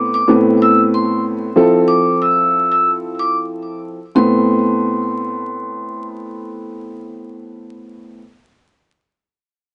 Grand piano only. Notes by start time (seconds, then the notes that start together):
Already playing: A2 A3 B3 C4
0.28 A2 A3 B3 C4
1.56 F3 C4 E4 A4
4.15 A2 A3 B3 C4